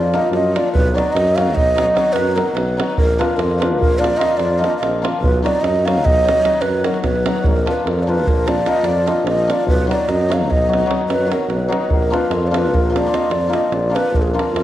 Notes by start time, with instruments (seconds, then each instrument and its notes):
Already playing: tuba F2, hammered dulcimer F3, ney D5
0.14 hammered dulcimer F3 A#3 D4 F4, ney D#5, davul high
0.31 tuba F#2, ney D#5, davul high
0.55 hammered dulcimer F3 A#3 D4 F4, ney D5, davul high
0.73 tuba B1, ney B4, davul low
0.87 davul high
0.94 hammered dulcimer F#3 B3 D#4 F#4, ney D5
0.98 davul high
1.12 tuba F#2, ney D#5, davul high
1.27 davul high
1.36 hammered dulcimer F#3 B3 D#4 F#4, ney F5, davul high
1.48 davul high
1.55 tuba B1, ney D#5, davul low
1.75 hammered dulcimer F#3 B3 D#4 F#4, davul high
1.94 hammered dulcimer F#3 B3 D#4 F#4, davul high
2.06 davul high
2.13 tuba F#2, ney B4, davul high
2.35 hammered dulcimer F#3 B3 D#4 F#4, ney A#4, davul high
2.55 tuba B1, ney B4, davul high
2.77 hammered dulcimer F#3 B3 D#4 F#4, davul high
2.97 tuba A#1, ney A#4, davul low
3.10 davul high
3.18 hammered dulcimer F3 A#3 D4 F4, ney B4, davul high
3.37 tuba F2, ney A#4, davul high
3.51 davul high
3.59 hammered dulcimer F3 A#3 D4 F4, ney B4, davul high
3.72 davul high
3.79 tuba A#1, ney A#4, davul low
3.99 hammered dulcimer F3 A#3 D4 F4, ney D5
4.04 davul high
4.17 hammered dulcimer F3 A#3 D4 F4, ney D#5
4.21 davul high
4.31 davul high
4.37 tuba F2, ney D5, davul high
4.59 hammered dulcimer F3 A#3 D4 F4, ney D#5
4.64 davul high
4.78 ney D#5
4.82 tuba A#1, davul high
5.02 hammered dulcimer F3 A#3 D4 F4, davul high
5.21 tuba B1, ney B4, davul low
5.42 hammered dulcimer F#3 B3 D#4 F#4, ney D5, davul high
5.55 davul high
5.61 tuba F#2, ney D#5, davul high
5.76 davul high
5.85 hammered dulcimer F#3 B3 D#4 F#4, ney F5, davul high
5.97 davul high
6.03 tuba B1, ney D#5, davul low
6.24 hammered dulcimer F#3 B3 D#4 F#4
6.28 davul high
6.36 davul high
6.44 hammered dulcimer F#3 B3 D#4 F#4, davul high
6.54 davul high
6.61 tuba F#2, ney B4, davul high
6.73 davul high
6.84 hammered dulcimer F#3 B3 D#4 F#4, ney A#4, davul high
6.94 davul high
7.03 tuba B1, ney B4, davul high, davul low
7.16 davul high
7.26 hammered dulcimer F#3 B3 D#4 F#4, davul high
7.36 davul high
7.43 tuba A#1, ney A#4, davul low
7.56 davul high
7.66 hammered dulcimer F3 A#3 D4 F4, davul high
7.70 ney B4
7.85 tuba F2, ney A#4, davul high
7.99 davul high
8.03 hammered dulcimer F3, ney D5
8.07 hammered dulcimer A#3 D4 F4, ney B4
8.19 davul high
8.27 tuba A#1, ney A#4, davul low
8.46 hammered dulcimer F3 A#3 D4 F4, ney D5, davul high
8.66 hammered dulcimer F3 A#3 D4 F4, ney D#5, davul high
8.76 davul high
8.83 tuba F2, ney D5, davul high
9.06 hammered dulcimer F3 A#3 D4 F4, ney D#5, davul high
9.24 tuba A#1, davul high
9.29 ney D#5
9.47 hammered dulcimer F3 A#3 D4 F4, ney D5, davul high
9.66 tuba B1, ney B4, davul low
9.80 davul high
9.87 hammered dulcimer F#3 B3 D#4 F#4, ney D5
9.91 davul high
10.09 tuba F#2, ney D#5, davul high
10.21 davul high
10.29 hammered dulcimer F#3 B3 D#4 F#4, davul high
10.33 ney F5
10.41 davul high
10.48 tuba B1, ney D#5, davul low
10.67 hammered dulcimer F#3 B3 D#4 F#4
10.73 davul high
10.85 hammered dulcimer F#3 B3 D#4 F#4
10.91 davul high
11.01 davul high
11.06 tuba F#2, ney B4, davul high
11.25 hammered dulcimer F#3 B3 D#4 F#4
11.31 ney A#4, davul high
11.48 tuba B1, ney B4, davul high
11.68 hammered dulcimer F#3 B3 D#4 F#4
11.72 davul high
11.89 tuba A#1, ney A#4, davul low
12.02 davul high
12.10 hammered dulcimer F3 A#3 D4 F4, ney B4, davul high
12.30 tuba F2, ney A#4, davul high
12.43 davul high
12.47 hammered dulcimer F3 A#3, ney D5
12.52 hammered dulcimer D4 F4, davul high
12.56 ney B4
12.65 davul high
12.73 tuba A#1, ney A#4, davul low
12.90 hammered dulcimer F3 A#3 D4 F4
12.96 ney D5, davul high
13.07 hammered dulcimer F3 A#3 D4 F4
13.14 ney D#5, davul high
13.22 davul high
13.30 tuba F2, ney D5, davul high
13.49 hammered dulcimer F3 A#3 D4 F4
13.54 ney D#5, davul high
13.71 tuba A#1, ney D5, davul high
13.90 hammered dulcimer F3 A#3 D4 F4
13.95 ney B4, davul high
14.12 tuba A#1, ney A#4, davul low
14.22 ney G#4
14.28 ney A#4, davul high
14.34 hammered dulcimer F3 A#3 D4 F4
14.39 davul high
14.53 tuba F2, davul high